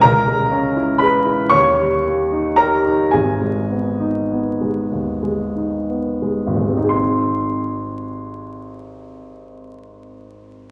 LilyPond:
<<
  \new Staff \with { instrumentName = "Grand piano" } { \time 6/8 \key dis \phrygian \tempo 4. = 32 <ais' ais''>4 <b' b''>8 <cis'' cis'''>4 <ais' ais''>8 | <gis' gis''>4. r4. | <gis,, dis, gis bis dis' gis' bis''>2. | }
  \new Staff \with { instrumentName = "Grand piano" } { \time 6/8 \key dis \phrygian cis,16 gis16 cis'16 e'16 gis'16 e'16 dis,16 g16 ais16 dis'16 g'16 dis'16 | gis,,16 gis16 b16 dis'16 b16 gis16 dis,16 gis16 dis'16 b16 gis16 dis,16 | r2. | }
>>